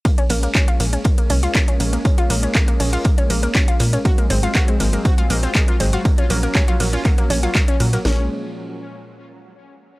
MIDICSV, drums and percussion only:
0, 0, Header, 1, 2, 480
1, 0, Start_track
1, 0, Key_signature, -5, "minor"
1, 0, Tempo, 500000
1, 48, Time_signature, 4, 2, 24, 8
1, 9596, End_track
2, 0, Start_track
2, 0, Title_t, "Drums"
2, 48, Note_on_c, 9, 36, 120
2, 48, Note_on_c, 9, 42, 60
2, 48, Note_on_c, 9, 51, 54
2, 52, Note_off_c, 9, 42, 0
2, 52, Note_on_c, 9, 42, 83
2, 144, Note_off_c, 9, 36, 0
2, 144, Note_off_c, 9, 51, 0
2, 148, Note_off_c, 9, 42, 0
2, 173, Note_on_c, 9, 42, 58
2, 269, Note_off_c, 9, 42, 0
2, 282, Note_on_c, 9, 42, 64
2, 288, Note_on_c, 9, 46, 109
2, 288, Note_on_c, 9, 51, 77
2, 378, Note_off_c, 9, 42, 0
2, 384, Note_off_c, 9, 46, 0
2, 384, Note_off_c, 9, 51, 0
2, 413, Note_on_c, 9, 42, 58
2, 509, Note_off_c, 9, 42, 0
2, 520, Note_on_c, 9, 42, 78
2, 528, Note_off_c, 9, 42, 0
2, 528, Note_on_c, 9, 36, 123
2, 528, Note_on_c, 9, 38, 124
2, 528, Note_on_c, 9, 39, 127
2, 528, Note_on_c, 9, 42, 59
2, 528, Note_on_c, 9, 51, 52
2, 624, Note_off_c, 9, 36, 0
2, 624, Note_off_c, 9, 38, 0
2, 624, Note_off_c, 9, 39, 0
2, 624, Note_off_c, 9, 42, 0
2, 624, Note_off_c, 9, 51, 0
2, 653, Note_on_c, 9, 42, 61
2, 749, Note_off_c, 9, 42, 0
2, 764, Note_on_c, 9, 38, 49
2, 768, Note_on_c, 9, 46, 99
2, 768, Note_on_c, 9, 51, 78
2, 771, Note_on_c, 9, 42, 69
2, 860, Note_off_c, 9, 38, 0
2, 864, Note_off_c, 9, 46, 0
2, 864, Note_off_c, 9, 51, 0
2, 867, Note_off_c, 9, 42, 0
2, 893, Note_on_c, 9, 42, 62
2, 989, Note_off_c, 9, 42, 0
2, 1003, Note_on_c, 9, 42, 81
2, 1008, Note_off_c, 9, 42, 0
2, 1008, Note_on_c, 9, 42, 60
2, 1008, Note_on_c, 9, 51, 54
2, 1009, Note_on_c, 9, 36, 116
2, 1104, Note_off_c, 9, 42, 0
2, 1104, Note_off_c, 9, 51, 0
2, 1105, Note_off_c, 9, 36, 0
2, 1133, Note_on_c, 9, 42, 60
2, 1229, Note_off_c, 9, 42, 0
2, 1244, Note_on_c, 9, 42, 67
2, 1248, Note_on_c, 9, 46, 106
2, 1248, Note_on_c, 9, 51, 75
2, 1340, Note_off_c, 9, 42, 0
2, 1344, Note_off_c, 9, 46, 0
2, 1344, Note_off_c, 9, 51, 0
2, 1373, Note_on_c, 9, 42, 56
2, 1379, Note_off_c, 9, 42, 0
2, 1379, Note_on_c, 9, 42, 46
2, 1475, Note_off_c, 9, 42, 0
2, 1488, Note_on_c, 9, 39, 125
2, 1488, Note_on_c, 9, 42, 60
2, 1488, Note_on_c, 9, 51, 54
2, 1489, Note_on_c, 9, 36, 120
2, 1492, Note_on_c, 9, 38, 125
2, 1498, Note_off_c, 9, 42, 0
2, 1498, Note_on_c, 9, 42, 86
2, 1584, Note_off_c, 9, 39, 0
2, 1584, Note_off_c, 9, 51, 0
2, 1585, Note_off_c, 9, 36, 0
2, 1588, Note_off_c, 9, 38, 0
2, 1594, Note_off_c, 9, 42, 0
2, 1613, Note_on_c, 9, 42, 61
2, 1709, Note_off_c, 9, 42, 0
2, 1728, Note_on_c, 9, 46, 98
2, 1728, Note_on_c, 9, 51, 76
2, 1730, Note_on_c, 9, 42, 68
2, 1824, Note_off_c, 9, 46, 0
2, 1824, Note_off_c, 9, 51, 0
2, 1826, Note_off_c, 9, 42, 0
2, 1853, Note_on_c, 9, 42, 61
2, 1949, Note_off_c, 9, 42, 0
2, 1968, Note_on_c, 9, 42, 58
2, 1968, Note_on_c, 9, 51, 52
2, 1969, Note_on_c, 9, 36, 123
2, 1972, Note_off_c, 9, 42, 0
2, 1972, Note_on_c, 9, 42, 94
2, 2064, Note_off_c, 9, 51, 0
2, 2065, Note_off_c, 9, 36, 0
2, 2068, Note_off_c, 9, 42, 0
2, 2093, Note_on_c, 9, 42, 56
2, 2189, Note_off_c, 9, 42, 0
2, 2208, Note_on_c, 9, 46, 115
2, 2208, Note_on_c, 9, 51, 73
2, 2210, Note_on_c, 9, 42, 69
2, 2304, Note_off_c, 9, 46, 0
2, 2304, Note_off_c, 9, 51, 0
2, 2306, Note_off_c, 9, 42, 0
2, 2333, Note_on_c, 9, 42, 58
2, 2429, Note_off_c, 9, 42, 0
2, 2441, Note_on_c, 9, 42, 91
2, 2448, Note_off_c, 9, 42, 0
2, 2448, Note_on_c, 9, 38, 127
2, 2448, Note_on_c, 9, 39, 125
2, 2448, Note_on_c, 9, 42, 57
2, 2448, Note_on_c, 9, 51, 51
2, 2449, Note_on_c, 9, 36, 124
2, 2544, Note_off_c, 9, 38, 0
2, 2544, Note_off_c, 9, 39, 0
2, 2544, Note_off_c, 9, 42, 0
2, 2544, Note_off_c, 9, 51, 0
2, 2545, Note_off_c, 9, 36, 0
2, 2573, Note_on_c, 9, 42, 60
2, 2669, Note_off_c, 9, 42, 0
2, 2688, Note_on_c, 9, 46, 103
2, 2688, Note_on_c, 9, 51, 75
2, 2692, Note_off_c, 9, 46, 0
2, 2692, Note_on_c, 9, 46, 83
2, 2784, Note_off_c, 9, 51, 0
2, 2788, Note_off_c, 9, 46, 0
2, 2813, Note_on_c, 9, 42, 59
2, 2909, Note_off_c, 9, 42, 0
2, 2922, Note_on_c, 9, 42, 90
2, 2928, Note_off_c, 9, 42, 0
2, 2928, Note_on_c, 9, 36, 123
2, 2928, Note_on_c, 9, 42, 58
2, 2928, Note_on_c, 9, 51, 53
2, 3024, Note_off_c, 9, 36, 0
2, 3024, Note_off_c, 9, 42, 0
2, 3024, Note_off_c, 9, 51, 0
2, 3053, Note_on_c, 9, 42, 58
2, 3149, Note_off_c, 9, 42, 0
2, 3168, Note_on_c, 9, 46, 110
2, 3168, Note_on_c, 9, 51, 75
2, 3169, Note_on_c, 9, 42, 66
2, 3264, Note_off_c, 9, 46, 0
2, 3264, Note_off_c, 9, 51, 0
2, 3265, Note_off_c, 9, 42, 0
2, 3293, Note_on_c, 9, 42, 56
2, 3389, Note_off_c, 9, 42, 0
2, 3403, Note_on_c, 9, 38, 111
2, 3408, Note_on_c, 9, 36, 124
2, 3408, Note_on_c, 9, 39, 127
2, 3408, Note_on_c, 9, 42, 60
2, 3408, Note_on_c, 9, 51, 53
2, 3409, Note_off_c, 9, 42, 0
2, 3409, Note_on_c, 9, 42, 97
2, 3499, Note_off_c, 9, 38, 0
2, 3504, Note_off_c, 9, 36, 0
2, 3504, Note_off_c, 9, 39, 0
2, 3504, Note_off_c, 9, 51, 0
2, 3505, Note_off_c, 9, 42, 0
2, 3533, Note_on_c, 9, 42, 59
2, 3629, Note_off_c, 9, 42, 0
2, 3643, Note_on_c, 9, 42, 72
2, 3648, Note_on_c, 9, 46, 102
2, 3648, Note_on_c, 9, 51, 71
2, 3739, Note_off_c, 9, 42, 0
2, 3744, Note_off_c, 9, 46, 0
2, 3744, Note_off_c, 9, 51, 0
2, 3770, Note_on_c, 9, 42, 47
2, 3773, Note_off_c, 9, 42, 0
2, 3773, Note_on_c, 9, 42, 59
2, 3869, Note_off_c, 9, 42, 0
2, 3888, Note_on_c, 9, 36, 127
2, 3888, Note_on_c, 9, 42, 58
2, 3888, Note_on_c, 9, 51, 50
2, 3889, Note_off_c, 9, 42, 0
2, 3889, Note_on_c, 9, 42, 94
2, 3984, Note_off_c, 9, 36, 0
2, 3984, Note_off_c, 9, 51, 0
2, 3985, Note_off_c, 9, 42, 0
2, 4013, Note_on_c, 9, 42, 56
2, 4109, Note_off_c, 9, 42, 0
2, 4128, Note_on_c, 9, 42, 69
2, 4129, Note_on_c, 9, 46, 114
2, 4129, Note_on_c, 9, 51, 74
2, 4224, Note_off_c, 9, 42, 0
2, 4225, Note_off_c, 9, 46, 0
2, 4225, Note_off_c, 9, 51, 0
2, 4253, Note_on_c, 9, 42, 55
2, 4349, Note_off_c, 9, 42, 0
2, 4368, Note_on_c, 9, 36, 126
2, 4368, Note_on_c, 9, 39, 122
2, 4368, Note_on_c, 9, 42, 57
2, 4368, Note_on_c, 9, 51, 50
2, 4369, Note_on_c, 9, 38, 118
2, 4371, Note_off_c, 9, 42, 0
2, 4371, Note_on_c, 9, 42, 91
2, 4464, Note_off_c, 9, 36, 0
2, 4464, Note_off_c, 9, 39, 0
2, 4464, Note_off_c, 9, 51, 0
2, 4465, Note_off_c, 9, 38, 0
2, 4467, Note_off_c, 9, 42, 0
2, 4493, Note_on_c, 9, 42, 58
2, 4589, Note_off_c, 9, 42, 0
2, 4609, Note_on_c, 9, 38, 46
2, 4609, Note_on_c, 9, 46, 101
2, 4609, Note_on_c, 9, 51, 74
2, 4613, Note_on_c, 9, 42, 73
2, 4705, Note_off_c, 9, 38, 0
2, 4705, Note_off_c, 9, 46, 0
2, 4705, Note_off_c, 9, 51, 0
2, 4709, Note_off_c, 9, 42, 0
2, 4734, Note_on_c, 9, 42, 58
2, 4830, Note_off_c, 9, 42, 0
2, 4848, Note_on_c, 9, 42, 90
2, 4849, Note_off_c, 9, 42, 0
2, 4849, Note_on_c, 9, 36, 127
2, 4849, Note_on_c, 9, 42, 56
2, 4849, Note_on_c, 9, 51, 50
2, 4945, Note_off_c, 9, 36, 0
2, 4945, Note_off_c, 9, 42, 0
2, 4945, Note_off_c, 9, 51, 0
2, 4974, Note_on_c, 9, 42, 57
2, 5070, Note_off_c, 9, 42, 0
2, 5088, Note_on_c, 9, 46, 117
2, 5088, Note_on_c, 9, 51, 74
2, 5089, Note_on_c, 9, 42, 65
2, 5184, Note_off_c, 9, 46, 0
2, 5184, Note_off_c, 9, 51, 0
2, 5185, Note_off_c, 9, 42, 0
2, 5209, Note_on_c, 9, 42, 47
2, 5213, Note_off_c, 9, 42, 0
2, 5213, Note_on_c, 9, 42, 54
2, 5309, Note_off_c, 9, 42, 0
2, 5326, Note_on_c, 9, 42, 98
2, 5327, Note_on_c, 9, 38, 114
2, 5328, Note_off_c, 9, 42, 0
2, 5328, Note_on_c, 9, 39, 124
2, 5328, Note_on_c, 9, 42, 56
2, 5328, Note_on_c, 9, 51, 52
2, 5329, Note_on_c, 9, 36, 127
2, 5423, Note_off_c, 9, 38, 0
2, 5424, Note_off_c, 9, 39, 0
2, 5424, Note_off_c, 9, 42, 0
2, 5424, Note_off_c, 9, 51, 0
2, 5425, Note_off_c, 9, 36, 0
2, 5453, Note_on_c, 9, 42, 57
2, 5549, Note_off_c, 9, 42, 0
2, 5568, Note_on_c, 9, 46, 102
2, 5568, Note_on_c, 9, 51, 73
2, 5570, Note_on_c, 9, 42, 66
2, 5664, Note_off_c, 9, 46, 0
2, 5664, Note_off_c, 9, 51, 0
2, 5666, Note_off_c, 9, 42, 0
2, 5693, Note_on_c, 9, 42, 59
2, 5789, Note_off_c, 9, 42, 0
2, 5809, Note_on_c, 9, 36, 127
2, 5809, Note_on_c, 9, 42, 57
2, 5809, Note_on_c, 9, 51, 52
2, 5814, Note_off_c, 9, 42, 0
2, 5814, Note_on_c, 9, 42, 82
2, 5905, Note_off_c, 9, 36, 0
2, 5905, Note_off_c, 9, 51, 0
2, 5910, Note_off_c, 9, 42, 0
2, 5933, Note_on_c, 9, 42, 53
2, 6029, Note_off_c, 9, 42, 0
2, 6046, Note_on_c, 9, 42, 71
2, 6048, Note_on_c, 9, 46, 113
2, 6048, Note_on_c, 9, 51, 76
2, 6142, Note_off_c, 9, 42, 0
2, 6144, Note_off_c, 9, 46, 0
2, 6144, Note_off_c, 9, 51, 0
2, 6173, Note_on_c, 9, 42, 54
2, 6269, Note_off_c, 9, 42, 0
2, 6289, Note_on_c, 9, 36, 127
2, 6289, Note_on_c, 9, 39, 116
2, 6289, Note_on_c, 9, 42, 55
2, 6289, Note_on_c, 9, 51, 54
2, 6290, Note_off_c, 9, 42, 0
2, 6290, Note_on_c, 9, 38, 123
2, 6290, Note_on_c, 9, 42, 91
2, 6385, Note_off_c, 9, 36, 0
2, 6385, Note_off_c, 9, 39, 0
2, 6385, Note_off_c, 9, 51, 0
2, 6386, Note_off_c, 9, 38, 0
2, 6386, Note_off_c, 9, 42, 0
2, 6413, Note_on_c, 9, 42, 56
2, 6509, Note_off_c, 9, 42, 0
2, 6529, Note_on_c, 9, 46, 82
2, 6529, Note_on_c, 9, 51, 74
2, 6625, Note_off_c, 9, 46, 0
2, 6625, Note_off_c, 9, 51, 0
2, 6653, Note_on_c, 9, 42, 54
2, 6749, Note_off_c, 9, 42, 0
2, 6768, Note_on_c, 9, 39, 38
2, 6768, Note_on_c, 9, 42, 56
2, 6768, Note_on_c, 9, 51, 53
2, 6769, Note_off_c, 9, 42, 0
2, 6769, Note_on_c, 9, 36, 121
2, 6769, Note_on_c, 9, 42, 88
2, 6864, Note_off_c, 9, 39, 0
2, 6864, Note_off_c, 9, 51, 0
2, 6865, Note_off_c, 9, 36, 0
2, 6865, Note_off_c, 9, 42, 0
2, 6893, Note_on_c, 9, 42, 54
2, 6989, Note_off_c, 9, 42, 0
2, 7008, Note_on_c, 9, 46, 113
2, 7008, Note_on_c, 9, 51, 75
2, 7014, Note_on_c, 9, 42, 65
2, 7104, Note_off_c, 9, 46, 0
2, 7104, Note_off_c, 9, 51, 0
2, 7110, Note_off_c, 9, 42, 0
2, 7133, Note_on_c, 9, 42, 54
2, 7229, Note_off_c, 9, 42, 0
2, 7248, Note_on_c, 9, 36, 126
2, 7248, Note_on_c, 9, 39, 122
2, 7248, Note_on_c, 9, 42, 56
2, 7248, Note_on_c, 9, 51, 52
2, 7251, Note_on_c, 9, 38, 111
2, 7253, Note_off_c, 9, 42, 0
2, 7253, Note_on_c, 9, 42, 90
2, 7344, Note_off_c, 9, 36, 0
2, 7344, Note_off_c, 9, 39, 0
2, 7344, Note_off_c, 9, 51, 0
2, 7347, Note_off_c, 9, 38, 0
2, 7349, Note_off_c, 9, 42, 0
2, 7373, Note_on_c, 9, 42, 58
2, 7469, Note_off_c, 9, 42, 0
2, 7488, Note_on_c, 9, 42, 68
2, 7489, Note_on_c, 9, 46, 104
2, 7489, Note_on_c, 9, 51, 73
2, 7584, Note_off_c, 9, 42, 0
2, 7585, Note_off_c, 9, 46, 0
2, 7585, Note_off_c, 9, 51, 0
2, 7613, Note_on_c, 9, 42, 58
2, 7616, Note_off_c, 9, 42, 0
2, 7616, Note_on_c, 9, 42, 47
2, 7712, Note_off_c, 9, 42, 0
2, 7728, Note_on_c, 9, 38, 109
2, 7824, Note_off_c, 9, 38, 0
2, 9596, End_track
0, 0, End_of_file